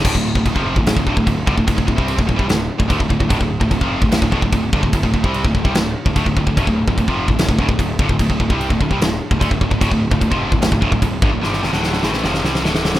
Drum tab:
CC |x---x---x---x---|x---x---x---x---|x---x---x---x---|x---x---x---x---|
SD |--------o-------|--------o-------|--------o-------|--------o-------|
BD |oo-ooo-o-oooo-oo|oooo-ooo---ooooo|oo-ooo-o-oooo-oo|oooo-ooo---ooooo|

CC |x---x---x---x---|x---x---x---x---|x---x---x---x---|----------------|
SD |--------o-------|--------o-------|--------o-------|oooooooooooooooo|
BD |oo-ooo-o-oooo-oo|oooo-ooo---ooooo|oo-ooo-o-oooo-o-|----------------|